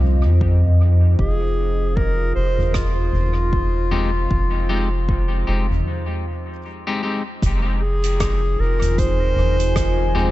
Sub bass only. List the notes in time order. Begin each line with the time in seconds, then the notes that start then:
Already playing: C2
0.25 F2
1.19 F1
2.36 F1
3.14 F1
4.31 F1
5.48 F1
7.42 F1
8.59 F1
9.37 F1